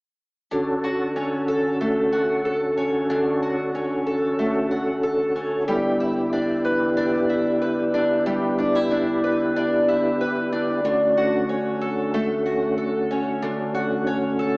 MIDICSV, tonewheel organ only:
0, 0, Header, 1, 2, 480
1, 0, Start_track
1, 0, Key_signature, 2, "major"
1, 0, Tempo, 645161
1, 388, Time_signature, 4, 2, 24, 8
1, 10840, End_track
2, 0, Start_track
2, 0, Title_t, "Tonewheel organ"
2, 0, Program_c, 0, 16
2, 386, Note_on_c, 0, 61, 51
2, 388, Note_on_c, 0, 50, 50
2, 390, Note_on_c, 0, 69, 61
2, 394, Note_on_c, 0, 66, 48
2, 4197, Note_off_c, 0, 61, 0
2, 4199, Note_off_c, 0, 69, 0
2, 4201, Note_off_c, 0, 66, 0
2, 4231, Note_on_c, 0, 59, 53
2, 4233, Note_on_c, 0, 67, 65
2, 4236, Note_on_c, 0, 64, 50
2, 8040, Note_off_c, 0, 59, 0
2, 8041, Note_off_c, 0, 67, 0
2, 8042, Note_off_c, 0, 64, 0
2, 8066, Note_on_c, 0, 57, 48
2, 8068, Note_on_c, 0, 66, 61
2, 8070, Note_on_c, 0, 61, 53
2, 10840, Note_off_c, 0, 50, 0
2, 10840, Note_off_c, 0, 57, 0
2, 10840, Note_off_c, 0, 61, 0
2, 10840, Note_off_c, 0, 66, 0
2, 10840, End_track
0, 0, End_of_file